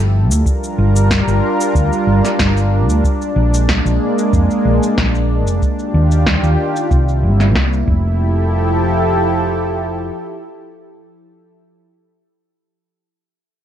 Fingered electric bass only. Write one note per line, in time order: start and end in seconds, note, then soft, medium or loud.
0.00 0.31 G1 medium
0.31 0.42 D2 medium
0.78 1.21 G1 medium
1.27 1.39 G1 medium
1.75 1.88 D2 medium
2.07 2.20 G1 medium
2.39 2.89 G1 medium
2.89 3.00 D2 medium
3.36 3.79 A#1 medium
3.85 3.97 A#1 medium
4.33 4.46 F2 medium
4.65 4.78 A#1 medium
4.98 5.47 A#1 medium
5.47 5.58 F1 medium
5.94 6.37 D#2 medium
6.43 6.55 D#2 medium
6.91 7.25 C2 medium
7.23 7.55 G1 medium
7.55 7.87 C2 medium
7.88 10.09 F1 medium